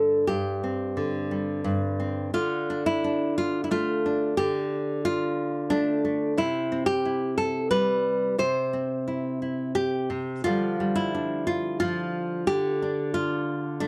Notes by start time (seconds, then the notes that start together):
Already playing: G2 D3 D4 A4
0.27 G2 G4
0.64 C4
0.97 D3
1.31 G3
1.64 G2
2.00 C4
2.34 D3 F4
2.70 D4
2.86 E4
3.04 D4
3.38 F4
3.64 E4
3.71 A3 F4
4.06 D4
4.37 D3 G4
5.05 F4
5.70 A3 D4
6.05 A3
6.37 C3 E4
6.72 C4
6.86 G4
7.05 E4
7.38 A4
7.71 G3 B4
8.39 C3 C5
8.73 C4
9.08 E4
9.42 E4
9.75 G4
10.10 C3
10.44 D3 F3 G3 F4
10.80 G3
10.96 E4
11.15 D4
11.47 F4
11.80 F3 F4
12.47 D3 G4
12.82 D4
13.14 F4
13.80 A3 D4